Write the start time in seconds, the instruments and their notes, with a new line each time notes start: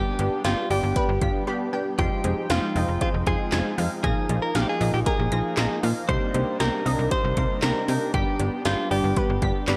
Already playing: analog polysynth G3 B3 D4 G4, analog synth pad G3 B3 D4, clean electric guitar G4, synth pluck B6
0.19 fm bass G1, analog polysynth G3 B3 D4 G4, closed hi-hat
0.45 fm bass G1, analog polysynth G3 B3 D4 G4, clean electric guitar F4, synth pluck G5, snare, closed hi-hat
0.70 fm bass G1, analog polysynth G3 B3 D4 G4, clean electric guitar G4, synth pluck D5, open hi-hat
0.83 fm bass G1
0.96 analog polysynth G3 B3 D4 G4, synth pluck B4, kick, closed hi-hat
1.09 fm bass G1
1.21 fm bass G1, analog polysynth G3 B3 D4 F4, synth pluck B6, kick, closed hi-hat
1.47 analog polysynth G3 B3 D4 G4, synth pluck B5
1.73 analog polysynth G3 B3 D4 G4, synth pluck G5
1.98 fm bass F1, analog synth pad F3 G#3 D#4, analog polysynth G#3 C4 D#4 F4, clean electric guitar G4, synth pluck C6, kick, closed hi-hat
2.24 fm bass F1, analog polysynth G#3 C4 D#4 G#4, closed hi-hat
2.50 fm bass F1, analog polysynth G#3 C4 D#4 F4, clean electric guitar F4, synth pluck F5, snare, closed hi-hat
2.75 fm bass F1, analog polysynth G#3 C4 D#4 F4, synth pluck D#5, open hi-hat
2.88 fm bass F1
3.01 analog polysynth G#3 C4 D#4 G#4, clean electric guitar F4, synth pluck C5, kick, closed hi-hat
3.14 fm bass F1
3.27 fm bass F1, analog polysynth G#3 C4 D#4 F4, clean electric guitar G#4, synth pluck C6, kick, closed hi-hat
3.52 fm bass F1, analog polysynth G#3 C4 D#4 F4, synth pluck G#5, snare, clap, closed hi-hat
3.78 fm bass F2, analog polysynth G#3 C4 D#4 F4, synth pluck F5, open hi-hat
4.04 fm bass A#1, analog polysynth F3 A#3 D#4 F4, analog synth pad A#3 D#4, clean electric guitar G#4, synth pluck A#6, kick, closed hi-hat
4.29 fm bass A#1, analog polysynth F3 A#3 D#4 F4, closed hi-hat
4.42 clean electric guitar A#4
4.55 fm bass A#1, analog polysynth F3 A#3 D#4 F4, clean electric guitar G#4, synth pluck F5, snare, closed hi-hat
4.62 clean electric guitar G4
4.69 clean electric guitar G#4
4.81 fm bass A#1, analog polysynth F3 A#3 D#4 F4, synth pluck D#5, open hi-hat
4.94 fm bass A#1, clean electric guitar G4
5.06 analog polysynth F3 A#3 D#4 G4, clean electric guitar G#4, synth pluck A#4, kick, closed hi-hat
5.19 fm bass A#1
5.32 fm bass A#1, analog polysynth F3 A#3 D#4 F4, synth pluck A#6, closed hi-hat
5.57 fm bass A#1, analog polysynth F3 A#3 D#4 F4, synth pluck A#5, snare, clap, closed hi-hat
5.83 fm bass A#2, analog polysynth F3 A#3 D#4 F4, synth pluck F5, open hi-hat
6.09 fm bass C2, analog synth pad C3 G3 D4 D#4, analog polysynth A#3 C4 D#4 G4, clean electric guitar C5, synth pluck C6, kick, closed hi-hat
6.34 fm bass C2, analog polysynth A#3 C4 D#4 G4, closed hi-hat
6.60 fm bass C2, analog polysynth A#3 C4 D#4 G4, clean electric guitar A#4, synth pluck G5, snare, closed hi-hat
6.85 fm bass C2, analog polysynth A#3 C4 D#4 A#4, synth pluck D#5, open hi-hat
6.99 fm bass C2
7.11 analog polysynth A#3 C4 D#4 G4, synth pluck C5, clean electric guitar C5, kick, closed hi-hat
7.24 fm bass C2
7.37 fm bass C2, analog polysynth A#3 C4 D#4 A#4, synth pluck C6, kick, closed hi-hat
7.62 fm bass C2, analog polysynth A#3 C4 D#4 G4, clean electric guitar A#4, synth pluck A#5, snare, clap, closed hi-hat
7.88 fm bass C3, analog polysynth A#3 C4 D#4 G4, synth pluck G5, open hi-hat
8.14 fm bass G1, analog polysynth G3 B3 D4 G4, analog synth pad B3, clean electric guitar G4, synth pluck B6, kick, closed hi-hat
8.39 fm bass G1, analog polysynth G3 B3 D4 G4, closed hi-hat
8.65 fm bass G1, analog polysynth G3 B3 D4 G4, clean electric guitar F4, synth pluck G5, snare, closed hi-hat
8.91 fm bass G1, analog polysynth G3 B3 D4 G4, clean electric guitar G4, synth pluck D5, open hi-hat
9.04 fm bass G1
9.16 analog polysynth G3 B3 D4 G4, synth pluck B4, kick, closed hi-hat
9.29 fm bass G1
9.42 fm bass G1, analog polysynth G3 B3 D4 G4, synth pluck B6, kick, closed hi-hat
9.68 fm bass G1, analog polysynth G3 B3 D4 G4, synth pluck B5, snare, clap, closed hi-hat